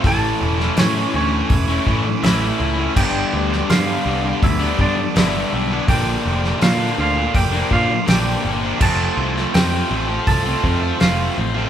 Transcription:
0.04 A1 A2 E3 A3 C#4 E4 A4 A5, kick, open hi-hat
0.40 E1 E3 A3 C#4 E4
0.59 A3 C#4 E4, snare
0.76 A2 E3 A3 C#4 E4 C#5, snare, open hi-hat
0.95 A2 E3 A3 C#4 E4
1.14 D2 E3 A3 C#4 E4 C#5
1.31 A3 C#4 E4, muted distorted electric guitar stroke
1.50 E1, kick, open hi-hat
1.67 A3 C#4 E4
1.86 A2 E3 A3 C#4 E4, kick
2.04 muted distorted electric guitar stroke
2.22 A1 A2 E3 A3 C#4 E4 E5, snare, open hi-hat
2.41 A3 C#4 E4
2.58 C#2 E3 A3 C#4 E4, muted distorted electric guitar stroke
2.76 A3 C#4 E4
2.96 G1 G2 D3 G3 B3 D4 G4 G5, kick, crash
3.32 D2 D3 G3 B3 D4
3.50 G3 B3 D4, snare
3.69 G2 D3 G3 B3 D4 F4 F5, snare, open hi-hat
3.87 G2 D3 G3 B3 D4
4.05 C2 D3 G3 B3 D4
4.24 G3 B3 D4, muted distorted electric guitar stroke
4.42 D2 E4 E5, kick, open hi-hat
4.60 G3 B3 D4
4.78 G2 D3 G3 B3 D4 D5, kick
4.97 muted distorted electric guitar stroke
5.15 G1 G2 D3 G3 B3 D4 E4 E5, snare, open hi-hat
5.33 G3 B3 D4
5.51 B1 D3 G3 B3 D4, muted distorted electric guitar stroke
5.69 G3 B3 D4
5.87 A#1 A#2 D3 F3 A#3 D4 G4 G5, kick, open hi-hat
6.23 F1 D3 F3 A#3 D4
6.43 F3 A#3 D4, snare
6.61 A#2 D3 F3 A#3 D4 F4 F5, snare, open hi-hat
6.79 A#2 D3 F3 A#3 D4
6.98 D2 D3 F3 A#3 D4 F4 F5
7.16 F3 A#3 D4, muted distorted electric guitar stroke
7.34 F1 G4 G5, kick, open hi-hat
7.53 F3 A#3 D4
7.71 A#2 D3 F3 A#3 D4 F4 F5, kick
7.89 muted distorted electric guitar stroke
8.07 A#1 A#2 D3 F3 A#3 D4 G4 G5, snare, open hi-hat
8.25 F3 A#3 D4
8.43 G1 D3 F3 A#3 D4, muted distorted electric guitar stroke
8.61 F3 A#3 D4
8.80 F1 F3 A3 C4 F4 A4 A5, kick, crash
9.17 C2 F3 A3 C4 F4
9.34 A3 C4 F4, snare
9.54 F2 F3 A3 C4 F4 G4 G5, snare, open hi-hat
9.71 F3 A3 C4 F4
9.90 A1 F3 A3 C4 F4
10.07 A3 C4 F4, muted distorted electric guitar stroke
10.27 C2 A4 A5, kick, open hi-hat
10.44 A3 C4 F4
10.63 F2 F3 A3 C4 F4, kick
10.81 muted distorted electric guitar stroke
11.00 F1 F3 A3 C4 F4 F5, snare, open hi-hat
11.19 A3 C4 F4
11.35 A1 F3 A3 C4 F4, muted distorted electric guitar stroke
11.54 A3 C4 F4

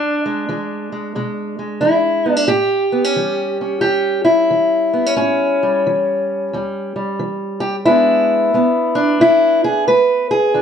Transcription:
Already playing: E2 D4
0.26 G#3
0.49 E3 G#3
0.92 G#3
1.15 B2 G#3
1.59 G#3
1.81 E3 E4
2.26 B3
2.32 D4
2.37 D4
2.48 A2 G4
2.92 B3
3.04 C#4
3.16 E3 G3
3.61 C#4
3.81 E2 G4
4.25 E4
4.51 E3
4.93 B3
5.06 C#4
5.17 A2 C#4
5.63 G3
5.87 E3
6.53 E2 G3
6.96 G3
7.19 E3
7.60 G4
7.85 E2 G#3 B3 D4 E4
8.54 G#3 B3
8.95 D4
9.20 E2 E4
9.64 G#4
9.88 G#3 B4
10.31 G#4
10.54 E2 D4

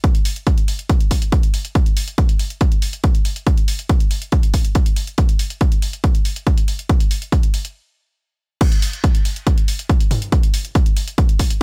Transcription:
0.04 kick, closed hi-hat
0.15 closed hi-hat
0.25 open hi-hat
0.36 closed hi-hat
0.47 kick, closed hi-hat
0.58 closed hi-hat
0.68 open hi-hat
0.79 closed hi-hat
0.89 kick, closed hi-hat
1.00 closed hi-hat
1.11 kick, open hi-hat
1.22 closed hi-hat
1.32 kick, closed hi-hat
1.43 closed hi-hat
1.54 open hi-hat
1.65 closed hi-hat
1.75 kick, closed hi-hat
1.86 closed hi-hat
1.97 open hi-hat
2.08 closed hi-hat
2.18 kick, closed hi-hat
2.29 closed hi-hat
2.39 open hi-hat
2.50 closed hi-hat
2.61 kick, closed hi-hat
2.72 closed hi-hat
2.82 open hi-hat
2.93 closed hi-hat
3.04 kick, closed hi-hat
3.15 closed hi-hat
3.25 open hi-hat
3.36 closed hi-hat
3.47 kick, closed hi-hat
3.58 closed hi-hat
3.68 open hi-hat
3.79 closed hi-hat
3.89 kick, closed hi-hat
4.00 closed hi-hat
4.11 open hi-hat
4.22 closed hi-hat
4.32 kick, closed hi-hat
4.43 closed hi-hat
4.54 kick, open hi-hat
4.65 closed hi-hat
4.75 kick, closed hi-hat
4.86 closed hi-hat
4.96 open hi-hat
5.07 closed hi-hat
5.18 kick, closed hi-hat
5.29 closed hi-hat
5.39 open hi-hat
5.50 closed hi-hat
5.61 kick, closed hi-hat
5.72 closed hi-hat
5.82 open hi-hat
5.93 closed hi-hat
6.04 kick, closed hi-hat
6.15 closed hi-hat
6.25 open hi-hat
6.36 closed hi-hat
6.47 kick, closed hi-hat
6.58 closed hi-hat
6.68 open hi-hat
6.79 closed hi-hat
6.89 kick, closed hi-hat
7.00 closed hi-hat
7.11 open hi-hat
7.22 closed hi-hat
7.32 kick, closed hi-hat
7.43 closed hi-hat
7.54 open hi-hat
7.65 closed hi-hat
8.61 kick, closed hi-hat, crash
8.72 closed hi-hat
8.82 open hi-hat
8.93 closed hi-hat
9.04 kick, closed hi-hat
9.15 closed hi-hat
9.25 open hi-hat
9.36 closed hi-hat
9.47 kick, closed hi-hat
9.58 closed hi-hat
9.68 open hi-hat
9.79 closed hi-hat
9.89 kick, closed hi-hat
10.00 closed hi-hat
10.11 mid tom, open hi-hat
10.22 closed hi-hat
10.32 kick, closed hi-hat
10.43 closed hi-hat
10.54 open hi-hat
10.65 closed hi-hat
10.75 kick, closed hi-hat
10.86 closed hi-hat
10.97 open hi-hat
11.08 closed hi-hat
11.18 kick, closed hi-hat
11.29 closed hi-hat
11.39 kick, open hi-hat
11.50 closed hi-hat

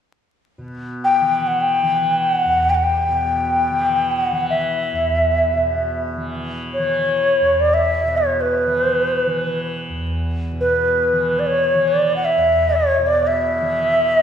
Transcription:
0.58 B2
1.04 G5
1.21 E3
1.47 F#5
1.61 G5
1.83 E3
2.23 G5
2.34 F#5
2.45 E2
2.70 G5
2.74 F#5
2.83 G5
3.08 B2
3.70 E3
4.11 G5
4.22 F#5
4.32 E3
4.50 E5
4.92 E2
5.53 B2
6.17 E3
6.73 C#5
6.78 E3
7.41 E2
7.60 D5
7.74 E5
8.03 B2
8.17 C#5
8.41 B4
8.66 E3
8.83 C5
8.95 B4
9.26 E3
9.89 E2
10.52 B2
10.60 B4
11.13 E3
11.39 D5
11.46 C#5
11.74 E3
11.87 D5
12.16 F#5
12.25 E5
12.37 E2
12.75 C#5
12.98 B2
13.07 D5
13.27 E5
13.61 E3
14.16 D#5

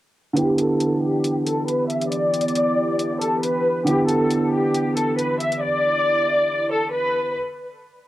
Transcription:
0.33 D3 E3 B3 D4 E4 G4, closed hi-hat
0.39 G4
0.58 A4, closed hi-hat
0.80 closed hi-hat
1.02 G4
1.24 closed hi-hat
1.46 A4, closed hi-hat
1.67 B4, closed hi-hat
1.89 E5, closed hi-hat
2.01 closed hi-hat
2.11 E4 D5, closed hi-hat
2.34 closed hi-hat
2.41 closed hi-hat
2.48 closed hi-hat
2.55 closed hi-hat
2.99 closed hi-hat
3.21 A4, closed hi-hat
3.43 B4, closed hi-hat
3.84 D3 B3 D4 E4 G4, closed hi-hat
3.90 G4
4.09 A4, closed hi-hat
4.31 closed hi-hat
4.53 G4
4.74 closed hi-hat
4.97 A4, closed hi-hat
5.18 B4, closed hi-hat
5.40 E5, closed hi-hat
5.52 closed hi-hat
5.62 E4 D5
6.72 A4
6.93 B4

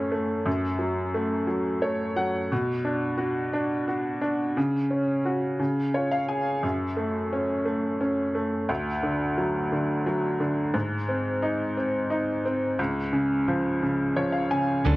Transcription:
Already playing: F#2 A3 C#4
0.12 A3
0.46 F#2
0.79 F#3
1.14 A3
1.47 F#3
1.82 A3 C#5
2.16 F#3 F#5
2.52 B2
2.85 D4
3.18 F#4
3.53 D4
3.88 F#4
4.22 D4
4.57 C#3
4.91 C#4
5.25 F#4
5.59 C#3
5.94 F4 C#5
6.12 F5
6.29 G#4 G#5
6.63 F#2
6.97 A3
7.33 C#4
7.65 A3
8.01 C#4
8.35 A3
8.69 D2
9.03 D3
9.38 F#3
9.72 D3
10.06 F#3
10.40 D3
10.74 G#2
11.09 C4
11.42 D#4
11.77 C4
12.10 D#4
12.45 C4
12.79 C#2
13.13 C#3
13.48 F3
13.82 C#3
14.16 F3 C#5
14.32 F5
14.51 C#3 G#5
14.85 D2 D3 F#3 A3 C#4 A4

